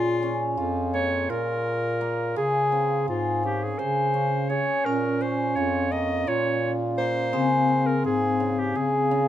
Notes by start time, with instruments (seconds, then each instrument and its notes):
Already playing: bass clarinet A#2, hammered dulcimer A#3 C#4 G#4, clarinet F4
0.23 hammered dulcimer C#4
0.57 bass clarinet F2, hammered dulcimer F4
0.94 hammered dulcimer A#3, clarinet C#5
1.30 bass clarinet A#2, hammered dulcimer F4, clarinet A#4
2.01 hammered dulcimer A#3
2.36 bass clarinet C#3, hammered dulcimer G#4, clarinet G#4
2.72 hammered dulcimer C4
3.08 bass clarinet G#2, clarinet F4, hammered dulcimer G#4
3.43 hammered dulcimer C#4, clarinet G4
3.63 clarinet G#4
3.79 bass clarinet C#3, hammered dulcimer G#4, clarinet C5
4.14 hammered dulcimer C#4
4.50 hammered dulcimer G#4, clarinet C#5
4.85 bass clarinet A#2, vibraphone C#4, clarinet A#4
5.21 hammered dulcimer C#4, clarinet C5
5.56 bass clarinet F2, hammered dulcimer F4, clarinet C#5
5.91 hammered dulcimer A#3, clarinet D#5
6.27 bass clarinet A#2, hammered dulcimer F4, clarinet C#5
6.98 hammered dulcimer A#3, clarinet C5
7.33 bass clarinet C#3, vibraphone C4, hammered dulcimer G#4
7.68 hammered dulcimer C4
7.86 clarinet A#4
8.04 bass clarinet G#2, hammered dulcimer G#4, clarinet G#4
8.40 hammered dulcimer C#3
8.59 clarinet G4
8.75 bass clarinet C#3, hammered dulcimer G#4, clarinet G#4
9.11 hammered dulcimer C#3